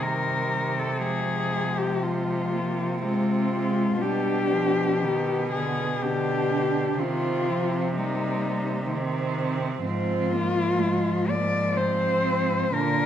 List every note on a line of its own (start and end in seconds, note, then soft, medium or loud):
0.00 3.96 C3 soft
0.00 1.02 D#3 soft
0.00 1.02 G3 soft
0.00 0.81 A#4 soft
0.79 1.03 A4 soft
1.03 2.99 F3 soft
1.03 2.02 G#3 soft
1.03 1.79 G#4 medium
1.78 2.05 G4 medium
2.03 2.55 G#3 soft
2.03 3.03 F4 medium
2.53 3.04 A#3 soft
3.02 3.51 G#3 soft
3.02 4.00 C4 soft
3.02 4.03 F4 medium
3.53 4.00 G#3 soft
4.00 6.96 B2 soft
4.00 4.53 G3 soft
4.00 5.03 D4 soft
4.00 5.52 G4 medium
4.51 5.04 F3 soft
5.01 5.52 D#3 soft
5.01 6.05 B3 soft
5.52 6.02 D3 soft
5.52 6.04 G#4 medium
6.03 6.99 D3 soft
6.03 7.01 D4 soft
6.03 7.01 G4 medium
6.99 9.82 C3 soft
6.99 7.51 D#3 soft
6.99 7.96 C4 soft
6.99 7.96 F4 medium
7.49 7.99 F3 soft
7.96 8.91 G3 soft
7.96 8.95 A#3 soft
7.96 8.91 D#4 medium
8.92 9.84 D#3 soft
8.92 9.85 C4 soft
9.85 12.70 G#2 soft
9.85 12.70 F3 soft
9.85 10.33 C4 soft
9.85 11.31 F4 medium
10.32 10.82 A#3 soft
10.80 11.30 G#3 medium
11.28 11.77 A#3 soft
11.28 11.79 D5 medium
11.76 12.74 C4 medium
11.76 12.76 C5 medium
12.74 13.06 A#2 medium
12.74 13.06 D3 soft
12.74 13.06 D4 soft
12.74 13.06 A#4 medium